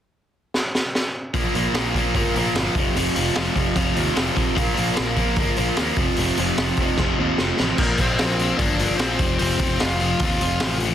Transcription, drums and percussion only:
0.54 snare medium
0.75 snare medium
0.95 snare medium
1.34 kick loud
1.34 open hi-hat medium
1.55 open hi-hat medium
1.74 snare loud
1.74 open hi-hat medium
1.94 kick medium
1.94 open hi-hat medium
2.15 kick loud
2.15 open hi-hat medium
2.35 open hi-hat medium
2.55 snare loud
2.55 open hi-hat medium
2.75 kick loud
2.75 open hi-hat medium
2.97 open hi-hat medium
3.16 open hi-hat medium
3.35 snare loud
3.35 open hi-hat medium
3.56 kick medium
3.56 open hi-hat soft
3.76 kick loud
3.76 open hi-hat medium
3.96 open hi-hat medium
4.16 snare loud
4.16 open hi-hat medium
4.36 kick medium
4.36 open hi-hat soft
4.57 kick loud
4.57 open hi-hat medium
4.77 open hi-hat medium
4.96 snare loud
4.96 open hi-hat medium
5.16 kick medium
5.16 open hi-hat medium
5.36 kick loud
5.36 open hi-hat medium
5.56 open hi-hat medium
5.76 snare loud
5.76 open hi-hat medium
5.96 kick loud
5.96 open hi-hat medium
6.16 open hi-hat medium
6.37 open hi-hat medium
6.58 snare loud
6.58 open hi-hat medium
6.77 kick medium
6.77 open hi-hat medium
6.97 kick loud
6.97 snare medium
7.38 snare medium
7.59 snare medium
7.78 kick loud
7.78 crash loud
7.98 kick medium
7.98 open hi-hat medium
8.18 snare loud
8.18 open hi-hat medium
8.39 open hi-hat medium
8.59 kick loud
8.59 open hi-hat medium
8.79 open hi-hat medium
8.99 snare loud
8.99 open hi-hat medium
9.19 kick loud
9.19 open hi-hat medium
9.39 open hi-hat medium
9.59 kick medium
9.59 open hi-hat medium
9.80 snare loud
9.80 open hi-hat medium
9.99 open hi-hat medium
10.19 kick loud
10.19 open hi-hat medium
10.41 open hi-hat medium
10.60 snare loud
10.60 open hi-hat medium
10.80 open hi-hat medium

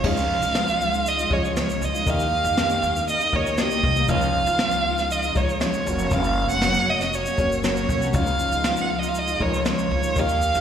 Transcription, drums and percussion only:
0.04 kick loud
0.04 crash loud
0.17 shaker medium
0.42 shaker medium
0.55 snare loud
0.55 shaker medium
0.67 shaker medium
0.81 shaker soft
0.94 shaker medium
1.06 shaker medium
1.18 shaker medium
1.31 kick medium
1.45 shaker soft
1.57 snare loud
1.57 shaker medium
1.69 shaker medium
1.82 shaker medium
1.95 shaker medium
2.07 kick loud
2.07 shaker medium
2.19 shaker medium
2.45 shaker medium
2.57 snare loud
2.57 shaker medium
2.70 shaker medium
2.83 shaker medium
2.96 shaker medium
3.08 shaker medium
3.20 shaker medium
3.33 kick loud
3.46 shaker soft
3.58 snare loud
3.58 shaker medium
3.71 shaker medium
3.83 kick medium
3.96 shaker soft
4.08 kick loud
4.08 shaker medium
4.21 shaker medium
4.46 shaker medium
4.59 snare loud
4.59 shaker medium
4.71 shaker medium
4.98 snare soft
4.98 shaker medium
5.11 shaker medium
5.23 shaker medium
5.35 kick medium
5.35 shaker soft
5.49 shaker soft
5.61 snare loud
5.61 shaker medium
5.74 shaker medium
5.87 shaker medium
5.99 shaker medium
6.11 kick loud
6.11 shaker medium
6.24 shaker medium
6.49 shaker medium
6.62 snare loud
6.62 shaker medium
6.74 shaker medium
7.01 snare soft
7.01 shaker medium
7.13 shaker medium
7.26 shaker medium
7.38 kick loud
7.38 shaker soft
7.52 shaker soft
7.64 snare loud
7.64 shaker medium
7.77 shaker medium
7.89 kick loud
7.89 shaker medium
8.02 shaker soft
8.14 kick loud
8.14 shaker medium
8.26 shaker medium
8.39 shaker medium
8.52 shaker medium
8.64 snare loud
8.64 shaker medium
8.76 shaker medium
9.03 shaker medium
9.15 shaker medium
9.28 shaker medium
9.40 kick medium
9.54 shaker soft
9.66 snare loud
9.66 shaker medium
9.79 shaker medium
10.03 shaker soft
10.16 kick loud
10.16 shaker medium
10.29 shaker medium
10.42 shaker medium
10.54 shaker medium

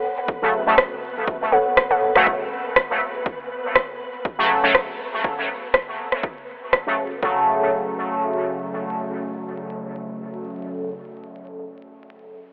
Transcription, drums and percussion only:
0.28 kick loud
0.78 kick loud
0.78 cross-stick medium
1.28 kick loud
1.77 kick loud
1.77 cross-stick medium
2.15 cross-stick soft
2.27 kick loud
2.76 kick loud
2.76 cross-stick medium
3.26 kick loud
3.75 kick loud
3.75 cross-stick medium
4.25 kick loud
4.75 kick loud
4.75 cross-stick medium
5.24 kick loud
5.74 kick loud
5.74 cross-stick medium
6.12 cross-stick soft
6.23 kick loud
6.73 kick loud
6.73 cross-stick medium
7.23 kick loud

